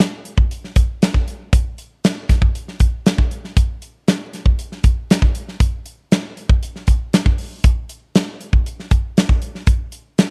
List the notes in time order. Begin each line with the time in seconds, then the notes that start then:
0.00 snare, closed hi-hat
0.25 closed hi-hat
0.38 kick
0.51 closed hi-hat
0.64 snare
0.76 kick, closed hi-hat
1.02 snare, closed hi-hat
1.14 kick
1.28 closed hi-hat
1.53 kick, closed hi-hat
1.78 closed hi-hat
2.04 snare, closed hi-hat
2.29 kick, snare, closed hi-hat
2.42 kick
2.55 closed hi-hat
2.68 snare
2.80 kick, closed hi-hat
3.06 snare, closed hi-hat
3.18 kick
3.31 closed hi-hat
3.45 snare
3.57 kick, closed hi-hat
3.82 closed hi-hat
4.08 snare, closed hi-hat
4.33 snare, closed hi-hat
4.46 kick
4.59 closed hi-hat
4.72 snare
4.84 kick, closed hi-hat
5.10 snare, closed hi-hat
5.22 kick
5.35 closed hi-hat
5.48 snare
5.60 kick, closed hi-hat
5.86 closed hi-hat
6.12 snare, closed hi-hat
6.37 closed hi-hat
6.49 kick
6.63 closed hi-hat
6.76 snare
6.87 kick, closed hi-hat
7.13 snare, closed hi-hat
7.26 kick
7.38 open hi-hat
7.64 kick, closed hi-hat
7.89 closed hi-hat
8.15 snare, closed hi-hat
8.41 closed hi-hat
8.53 kick
8.66 closed hi-hat
8.80 snare
8.91 kick, closed hi-hat
9.17 snare, closed hi-hat
9.29 kick
9.42 closed hi-hat
9.55 snare
9.67 kick, closed hi-hat
9.92 closed hi-hat
10.18 snare, closed hi-hat